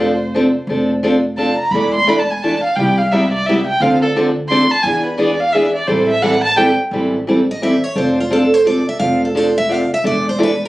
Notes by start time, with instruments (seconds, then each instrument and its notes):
Already playing: upright bass F1, violin C5
0.00 steel-string acoustic guitar D4 A4
0.34 steel-string acoustic guitar F3 C4 D4 A4
0.67 upright bass F1, steel-string acoustic guitar F3 C4 D4 A4
1.03 steel-string acoustic guitar F3 C4 D4 A4
1.37 steel-string acoustic guitar F3 C4 D4 A4, violin A5
1.58 violin A#5
1.71 upright bass E1, steel-string acoustic guitar E3 A3 D4 E4 A4, violin B5
1.95 violin C6
2.07 steel-string acoustic guitar E3 A3 D4 E4 A4, violin B5
2.19 violin A5
2.31 violin G#5
2.43 steel-string acoustic guitar E3 A3 D4 E4 A4, violin A5
2.64 violin F5
2.76 upright bass C2, steel-string acoustic guitar C3 G3 B3, violin G5
2.80 steel-string acoustic guitar E4 G4
2.98 violin F5
3.12 steel-string acoustic guitar C3 G3 B3 E4 G4, violin E5
3.32 violin D5
3.46 steel-string acoustic guitar C3 G3 B3 E4 G4, violin E5
3.67 violin G5
3.80 upright bass D2, steel-string acoustic guitar D3 F3 C4 D4 A4, violin F5
4.02 violin A4
4.16 steel-string acoustic guitar D3 F3 C4 D4 A4
4.49 steel-string acoustic guitar D3 F3 C4 D4 A4, violin C6
4.72 violin A5
4.83 upright bass E2, steel-string acoustic guitar E3 B3 D4, violin G#5
4.87 steel-string acoustic guitar G#4
5.06 violin B4
5.18 steel-string acoustic guitar E3 B3 D4 G#4, violin D5
5.40 violin F5
5.53 steel-string acoustic guitar E3 B3 D4 G#4, violin E5
5.75 violin D5
5.87 upright bass A1, steel-string acoustic guitar E3 G3 C4 E4 A4, violin C5
6.09 violin E5
6.22 steel-string acoustic guitar E3 G3 C4 E4 A4, violin F#5
6.44 violin A5
6.56 steel-string acoustic guitar E3 G3 C4 E4 A4, violin G5
6.91 upright bass A1, steel-string acoustic guitar E3 G3 C4 E4 A4
7.27 steel-string acoustic guitar E3 G3 C4 E4 A4
7.51 steel-string acoustic guitar D#5
7.62 steel-string acoustic guitar E3 G3 C4 E4 A4 E5
7.84 steel-string acoustic guitar C#5
7.96 upright bass F1, steel-string acoustic guitar F3 C4 D4 A4 C5
8.20 steel-string acoustic guitar F4
8.31 steel-string acoustic guitar F3 C4 D4 A4
8.54 steel-string acoustic guitar C5
8.65 steel-string acoustic guitar F3 C4 D4 A4 D5
8.89 steel-string acoustic guitar E5
8.99 upright bass F1, steel-string acoustic guitar F3 C4 D4 A4 F5
9.25 steel-string acoustic guitar A4
9.35 steel-string acoustic guitar F3 C4 D4 A4 C5
9.58 steel-string acoustic guitar E5
9.68 steel-string acoustic guitar F3 C4 D4 A4 F5
9.94 steel-string acoustic guitar E5
10.04 upright bass E1, steel-string acoustic guitar E3 A3 D4 E4 A4 D5
10.29 steel-string acoustic guitar C5
10.38 steel-string acoustic guitar E3 A3 D4 E4 A4
10.43 steel-string acoustic guitar B4